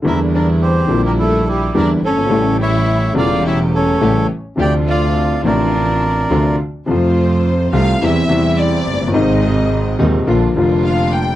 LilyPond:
<<
  \new Staff \with { instrumentName = "Bandoneon" } { \time 4/4 \key d \minor \tempo 4 = 106 <bes' e''>8 <bes' d''>8 <g' c''>8. <g' bes'>16 <e' a'>8 <e' g'>8 <bes' d''>8 <a' cis''>8~ | <a' cis''>8 <cis'' e''>4 <d'' f''>8 <cis'' e''>8 <a' cis''>4 r8 | <d'' g''>8 <d'' f''>4 <bes' d''>2 r8 | \key c \mixolydian r1 |
r1 | }
  \new Staff \with { instrumentName = "Violin section" } { \time 4/4 \key d \minor e'8 d'8 c'8. bes16 a8 g8 d'8 cis'8~ | cis'8 e'4 f'8 e'8 cis'4 r8 | g'8 f'4 d'2 r8 | \key c \mixolydian c''4. f''8 e''4 d''4 |
ees''4. r4. f''8 g''8 | }
  \new Staff \with { instrumentName = "String section" } { \time 4/4 \key d \minor <g d' e'>4. <g d' e'>4. <g d' e'>8 r8 | <a cis' g'>4. <a cis' g'>4. <a cis' g'>8 r8 | <c' d' f'>4. <c' d' f'>4. <c' d' f'>8 r8 | \key c \mixolydian <a c' f'>4. <a c' f'>8 <g c' e'>8 <g c' e'>4. |
<aes c' ees'>4. <aes c' ees'>8 <bes d' f'>8 <bes d' f'>4. | }
  \new Staff \with { instrumentName = "Upright piano" } { \clef bass \time 4/4 \key d \minor << { <e, d e g bes e'>4. <bes,, bes, d g bes e'>4. <e, d e g bes e'>8 r8 | <a,, a, cis g a e'>4. <e,, e, cis g a e'>4. <a,, a, cis g a e'>8 r8 | <d, c d f a d'>4. <a,, a, c f c' d'>4. <d, c d f a d'>8 r8 | \key c \mixolydian <f, c f a f'>4. <c, c f a f'>8 <e, c e g e'>8 <e, c e g e'>4. |
<aes,, aes, c ees aes ees'>4. <ees,, ees, c ees aes ees'>8 <bes,, bes, d f bes f'>8 <f,, f, d f bes f'>4. | } \\ { r2. r8 r32 fis,,32 g,,32 gis,,32 | r1 | r1 | r2. r8 r32 f,,32 ges,,32 g,,32 |
r1 | } >> }
  \new Staff \with { instrumentName = "Double bass" } { \clef bass \time 4/4 \key d \minor e,4. bes,,4. e,8 g,,8 | a,,4. e,,4. a,,8 r8 | d,4. a,,4. d,8 r8 | \key c \mixolydian f,4. c,8 e,8 e,4 ges,,8 |
aes,,4. ees,8 bes,,8 f,,4. | }
>>